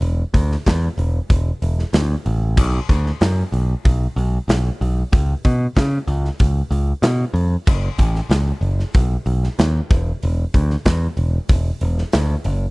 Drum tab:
CC |----------------|x---------------|----------------|x---------------|
HH |o-o-o-o-o-o-o-o-|--o-o-o-o-o-o-o-|o-o-o-o-o-o-o-o-|--o-o-o-o-o-o-o-|
SD |---oo------oo---|---oo-------o---|----o--o----o---|---oo--o---oo---|
BD |--o-o---o-------|o-o-----o-------|o-o-o---o-------|o-o-----o-----o-|

CC |----------------|
HH |o-o-o-o-o-o-o-o-|
SD |---oo------oo---|
BD |--o-o---o-------|